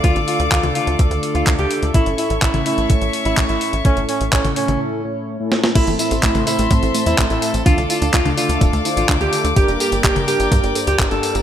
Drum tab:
CC |----------------|----------------|----------------|x---------------|
HH |xxoxxxoxxxoxxxox|xxoxxxoxxxoxxxox|xxoxxxox--------|xxoxxxoxxxoxxxox|
TB |----------------|----------------|----------------|xxxxxxxxxxxxxxxx|
CP |----x-------x---|----x-------x---|----x-----------|----x-------x---|
SD |----------------|----------------|--------------oo|----------------|
T1 |-----o------o---|-----o----------|-----o-o--------|-----o----------|
BD |o---o---o---o---|o---o---o---o---|o---o-----------|o---o---o---o---|

CC |----------------|----------------|
HH |xxoxxxoxxxoxxxox|xxoxxxoxxxoxxxox|
TB |xxxxxxxxxxxxxxxx|xxxxxxxxxxxxxxxx|
CP |----x-------x---|----x-------x---|
SD |----------------|----------------|
T1 |-----o------o---|-----o----------|
BD |o---o---o---o---|o---o---o---o---|